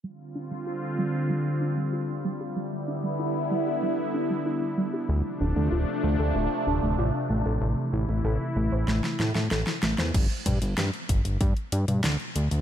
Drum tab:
CC |----------------|----------------|----------------|----------------|
HH |----------------|----------------|----------------|----------------|
SD |----------------|----------------|----------------|--------oooooooo|
T2 |----------------|----------------|----------------|----------------|
BD |----------------|----------------|----------------|----------------|

CC |x---------------|
HH |xxxxxxxxxxxxxxxx|
SD |----o-------o---|
T2 |--o--------o----|
BD |o-o---o-o-------|